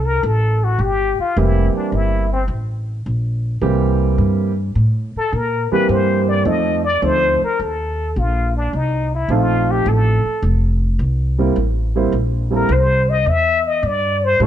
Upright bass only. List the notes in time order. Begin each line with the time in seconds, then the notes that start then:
Already playing: C2
0.23 A1
0.79 G1
1.18 muted upright bass stroke
1.37 F1
1.75 muted upright bass stroke
1.92 G1
2.48 A1
3.06 A#1
3.61 C2
4.18 G2
4.75 A2
5.16 muted upright bass stroke
5.33 A#2
5.72 muted upright bass stroke
5.89 G2
6.45 F2
7.02 D2
7.42 muted upright bass stroke
7.59 D#2
8.16 A#1
8.73 C2
9.29 A#1
9.86 A1
10.25 muted upright bass stroke
10.42 F1
10.99 C2
11.56 A1
12.12 A#1
12.69 C2
13.26 E2
13.83 G2
14.40 A2